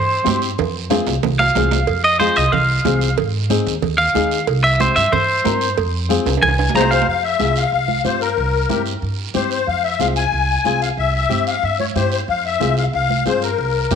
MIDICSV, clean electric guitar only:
0, 0, Header, 1, 2, 480
1, 0, Start_track
1, 0, Key_signature, -4, "minor"
1, 0, Tempo, 324851
1, 870, Time_signature, 4, 2, 24, 8
1, 10453, Key_signature, -4, "minor"
1, 20614, End_track
2, 0, Start_track
2, 0, Title_t, "Clean electric guitar"
2, 0, Program_c, 0, 27
2, 0, Note_on_c, 0, 72, 95
2, 604, Note_off_c, 0, 72, 0
2, 2057, Note_on_c, 0, 77, 95
2, 2993, Note_off_c, 0, 77, 0
2, 3019, Note_on_c, 0, 75, 84
2, 3238, Note_off_c, 0, 75, 0
2, 3244, Note_on_c, 0, 72, 94
2, 3493, Note_off_c, 0, 72, 0
2, 3493, Note_on_c, 0, 75, 84
2, 3725, Note_off_c, 0, 75, 0
2, 3725, Note_on_c, 0, 77, 100
2, 4665, Note_off_c, 0, 77, 0
2, 5882, Note_on_c, 0, 77, 104
2, 6588, Note_off_c, 0, 77, 0
2, 6853, Note_on_c, 0, 76, 87
2, 7088, Note_off_c, 0, 76, 0
2, 7101, Note_on_c, 0, 72, 90
2, 7325, Note_on_c, 0, 76, 98
2, 7332, Note_off_c, 0, 72, 0
2, 7564, Note_off_c, 0, 76, 0
2, 7572, Note_on_c, 0, 72, 94
2, 8503, Note_off_c, 0, 72, 0
2, 9494, Note_on_c, 0, 80, 99
2, 9959, Note_off_c, 0, 80, 0
2, 9981, Note_on_c, 0, 82, 82
2, 10207, Note_on_c, 0, 77, 94
2, 10210, Note_off_c, 0, 82, 0
2, 10442, Note_off_c, 0, 77, 0
2, 20614, End_track
0, 0, End_of_file